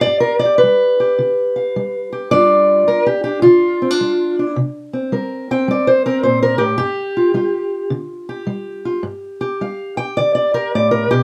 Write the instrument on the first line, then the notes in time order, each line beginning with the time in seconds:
steel-string acoustic guitar
Already playing: G4 F5
0.01 D5
0.06 G2
0.20 A#4
0.39 D5
0.45 G4
0.58 B4
0.63 G3
1.00 G4
1.19 D3
1.56 F5
1.76 G3
2.12 G4
2.31 G2 G3 D4 F4 D5
2.87 G3 A#4
3.06 G4
3.24 D4 G4
3.42 D3 F4
3.82 C4
3.91 D4
4.01 G3
4.39 D4
4.56 C3
4.93 C4
5.12 G3 A#4
5.51 C4 G5
5.68 G3 D5
5.87 C5
6.06 C4 A#4
6.23 A#2 C5
6.43 A#4
6.58 A2 G4
6.78 G2 G4
7.17 F4
7.34 G3 F4
7.90 D3
8.29 G4
8.47 G3
8.85 F4
9.03 G2
9.41 G4
9.61 G3 F5
9.97 G4 G5
10.17 D3 D5
10.35 D5
10.54 G4 A#4
10.75 A2 D5
10.91 A#4
11.11 B2 G4